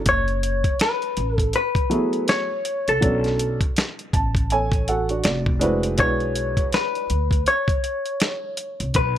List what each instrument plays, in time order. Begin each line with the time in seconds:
0.06 upright bass F#1, hollow-body jazz guitar C#5, kick, closed hi-hat
0.28 closed hi-hat
0.43 closed hi-hat
0.64 kick, closed hi-hat
0.79 hollow-body jazz guitar B4, snare, closed hi-hat
1.02 closed hi-hat
1.17 upright bass A1, closed hi-hat
1.38 hollow-body jazz guitar A4, kick, closed hi-hat
1.53 hollow-body jazz guitar B4, closed hi-hat
1.75 kick, closed hi-hat
1.90 grand piano F#3 A3 B3 E4 G#4, closed hi-hat
2.13 closed hi-hat
2.28 hollow-body jazz guitar C#5, snare, closed hi-hat
2.65 closed hi-hat
2.88 upright bass C2, hollow-body jazz guitar A4, closed hi-hat
3.01 upright bass B1, grand piano F#3 B3 C#4 D4 A4, kick, closed hi-hat
3.24 snare, closed hi-hat
3.39 closed hi-hat
3.61 kick, closed hi-hat
3.76 snare, closed hi-hat
3.99 closed hi-hat
4.13 upright bass A1, grand piano A5, kick, closed hi-hat
4.35 kick, closed hi-hat
4.50 grand piano A4 C#5 G#5, closed hi-hat
4.72 kick, closed hi-hat
4.88 grand piano F#4 A4 F#5, closed hi-hat
5.09 grand piano D4 F#4, closed hi-hat
5.24 upright bass F1, grand piano D5, snare, closed hi-hat
5.46 kick
5.59 grand piano G#3 D4 E4 F#4 B4 C5, closed hi-hat
5.83 closed hi-hat
5.97 upright bass B1, grand piano G#3 D4 E4 F#4 B4, hollow-body jazz guitar C#5, kick, closed hi-hat
6.20 closed hi-hat
6.36 closed hi-hat
6.57 kick, closed hi-hat
6.72 hollow-body jazz guitar B4, snare, closed hi-hat
6.95 closed hi-hat
7.10 upright bass D2, closed hi-hat
7.31 kick, closed hi-hat
7.46 hollow-body jazz guitar C#5, closed hi-hat
7.68 kick, closed hi-hat
7.84 closed hi-hat
8.06 closed hi-hat
8.20 snare, closed hi-hat
8.57 closed hi-hat
8.80 upright bass C2, closed hi-hat
8.94 upright bass B1, hollow-body jazz guitar B4, kick, closed hi-hat